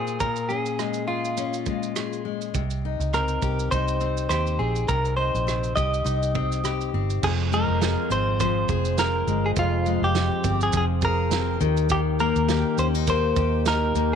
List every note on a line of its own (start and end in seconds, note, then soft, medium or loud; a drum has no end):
0.00 0.20 A#2 medium
0.00 0.21 G#4 medium
0.07 shaker soft
0.20 2.54 A#2 medium
0.20 0.51 A#4 medium
0.20 kick loud
0.20 shaker medium
0.36 shaker soft
0.49 1.36 C#4 medium
0.49 1.07 G#4 medium
0.49 shaker soft
0.66 shaker soft
0.79 1.66 G#3 medium
0.79 cross-stick medium
0.79 shaker medium
0.94 shaker soft
1.07 2.21 F4 medium
1.07 1.95 G#4 medium
1.25 shaker soft
1.37 2.61 C#4 medium
1.37 shaker medium
1.53 shaker medium
1.66 2.24 G#3 medium
1.66 kick medium
1.66 shaker soft
1.83 shaker soft
1.96 2.61 G#4 medium
1.96 cross-stick loud
1.96 shaker medium
2.13 shaker soft
2.25 2.61 G#3 soft
2.41 shaker soft
2.54 2.96 C2 medium
2.54 4.88 C3 medium
2.54 kick medium
2.54 shaker medium
2.70 shaker soft
2.85 3.72 D#4 medium
3.00 3.39 C#2 medium
3.00 shaker soft
3.14 4.00 C4 medium
3.14 3.71 A#4 medium
3.14 cross-stick medium
3.14 shaker medium
3.28 shaker soft
3.42 3.69 C2 medium
3.42 4.28 G4 medium
3.42 kick medium
3.42 shaker medium
3.59 shaker soft
3.71 4.27 C2 loud
3.71 5.16 D#4 medium
3.71 4.28 C5 medium
3.71 kick medium
3.71 shaker medium
3.88 shaker medium
4.01 4.59 C4 medium
4.01 shaker soft
4.17 shaker medium
4.29 4.57 D#2 medium
4.29 5.75 G4 medium
4.29 4.60 C5 medium
4.29 cross-stick loud
4.29 shaker medium
4.47 shaker soft
4.59 4.87 A#1 loud
4.59 5.47 C4 soft
4.59 4.87 G#4 medium
4.76 shaker soft
4.88 5.31 C2 medium
4.88 7.23 C3 medium
4.88 5.16 A#4 loud
4.88 kick medium
4.88 shaker medium
5.05 shaker soft
5.17 6.03 D#4 medium
5.17 5.75 C5 medium
5.34 5.74 A#1 medium
5.34 shaker soft
5.47 6.34 C4 medium
5.47 cross-stick medium
5.47 shaker medium
5.63 shaker soft
5.76 6.04 C2 loud
5.76 6.62 G4 medium
5.76 6.89 D#5 medium
5.76 kick loud
5.76 shaker medium
5.94 shaker soft
6.04 6.90 C2 loud
6.04 7.29 D#4 medium
6.04 shaker medium
6.23 shaker medium
6.35 6.94 C4 medium
6.35 kick loud
6.52 cross-stick soft
6.52 shaker medium
6.64 7.29 G4 medium
6.64 cross-stick medium
6.64 shaker medium
6.81 shaker soft
6.94 7.21 G1 medium
6.94 7.52 C4 medium
7.10 shaker soft
7.22 7.65 F1 loud
7.22 9.56 F2 medium
7.22 11.57 F3 medium
7.22 11.57 G#3 medium
7.22 11.57 C4 medium
7.22 7.32 G#4 loud
7.22 kick loud
7.22 crash medium
7.52 9.26 G#3 medium
7.52 8.12 A#4 loud
7.52 shaker soft
7.68 7.95 F1 medium
7.82 8.68 G#4 medium
7.82 snare loud
7.82 shaker medium
8.10 8.65 G#1 loud
8.10 8.98 C4 medium
8.10 8.40 C5 loud
8.10 shaker medium
8.40 10.71 F3 medium
8.40 8.99 C5 loud
8.40 kick medium
8.40 shaker medium
8.68 9.23 F1 medium
8.68 10.15 G#4 medium
8.68 kick loud
8.68 shaker medium
8.85 shaker medium
8.98 10.43 C4 medium
8.98 9.46 A#4 loud
8.98 snare loud
8.98 shaker medium
9.27 9.54 G1 medium
9.27 9.85 G#3 medium
9.27 shaker soft
9.46 9.51 G#4 medium
9.56 9.98 F1 loud
9.56 11.68 F2 medium
9.56 10.05 F4 loud
9.56 kick loud
9.56 shaker medium
9.86 11.68 G#3 medium
9.86 shaker soft
10.02 10.29 F1 loud
10.02 10.63 G4 medium
10.15 snare medium
10.15 shaker medium
10.44 10.71 G1 loud
10.44 11.30 C4 medium
10.44 kick loud
10.44 shaker medium
10.61 10.75 G#4 medium
10.61 shaker medium
10.72 11.57 F1 loud
10.72 11.60 F3 medium
10.72 kick medium
10.72 shaker medium
10.77 10.85 G#4 loud
11.02 11.68 G#4 medium
11.02 11.58 A#4 medium
11.02 kick loud
11.02 shaker medium
11.31 11.67 C4 medium
11.31 snare loud
11.31 shaker medium
11.61 12.32 D#2 loud
11.61 11.89 D#3 medium
11.61 14.15 D#3 medium
11.61 14.15 A#3 medium
11.61 14.15 G4 medium
11.61 shaker medium
11.77 shaker medium
11.89 14.15 D#3 medium
11.89 11.99 G4 loud
11.89 kick loud
11.89 shaker medium
12.20 13.07 A#3 medium
12.20 12.79 A#4 loud
12.20 shaker soft
12.36 12.63 D#2 loud
12.36 shaker medium
12.49 13.36 G4 medium
12.49 snare loud
12.49 shaker medium
12.78 13.33 D#2 loud
12.78 12.95 C#4 medium
12.78 12.87 C5 medium
12.78 shaker medium
12.95 13.65 D#4 medium
12.95 shaker medium
13.07 13.94 A#3 medium
13.07 13.67 C5 medium
13.07 kick medium
13.07 shaker medium
13.36 13.91 D#2 loud
13.36 14.15 G4 medium
13.36 kick loud
13.36 shaker medium
13.66 14.15 D#4 medium
13.66 14.14 A#4 medium
13.66 snare loud
13.66 shaker loud
13.95 14.15 D#2 medium
13.95 14.15 A#3 medium
13.95 shaker medium